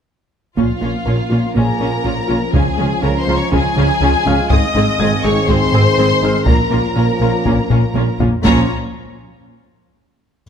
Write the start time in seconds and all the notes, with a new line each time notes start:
0.57 A#1 A#2 F3 A#3 C#4 F4 F5, taiko
0.81 A#1 A#2 A#3 C#4 F4
1.05 A#1 A#2 C#4 F4 A#4
1.30 A#1 A#2 A#3 C#4 F4
1.55 A#1 A#2 A#3 C#4 F4 G#4 A#4 A#5
1.59 G#5
1.80 A#1 A#2 C#4 F4 A#4
2.04 A#1 A#2 C#4 F4 A#4
2.28 A#1 A#2 A#3 C#4 F4
2.53 C#2 C#3 G#3 C#4 F4 G#4 G#5, taiko
2.78 C#2 C#3 G#3 C#4 F4
3.02 C#2 C#3 C#4 F4 A#4 A#5
3.20 C5 C6
3.27 C#2 C#3 G#3 C#4 F4 A#5
3.36 C#5 C#6
3.52 C#2 C#3 C#4 F4 G#4 G#5, taiko
3.77 C#2 C#3 C#4 F4
4.01 C#2 C#3 C#4 F4
4.26 C#2 C#3 G#3 C#4 F4 F5 F6
4.50 G#1 G#2 D#3 G#3 C4 G#4 D#5 D#6, taiko
4.75 G#1 G#2 G#3 C4 D#4 G#4
4.99 G#1 G#2 C4 G#4 G#6
5.23 G#1 G#2 G#3 C4 D#4 G#4 C#5 C#6
5.47 G#1 G#2 G#3 C4 G#4 C5 C6, taiko
5.72 G#1 G#2 C4 G#4
5.98 G#1 G#2 C4 G#4
6.22 G#1 G#2 G#3 C4 D#4 G#4 F6
6.46 A#1 A#2 F3 A#3 C#4 F4 A#4 A#5, taiko
6.71 A#1 A#2 A#3 C#4 F4
6.96 A#1 A#2 C#4 F4 A#4
7.20 A#1 A#2 A#3 C#4 F4
7.45 A#1 A#2 A#3 C#4 F4, taiko
7.70 A#1 A#2 C#4 F4 A#4, taiko low-mid
7.94 A#1 A#2 C#4 F4 A#4, taiko high
8.19 A#1 A#2 A#3 C#4 F4, taiko low
8.43 A#1 A#2 F3 A#3 C#4 F4 C#5 A#5, taiko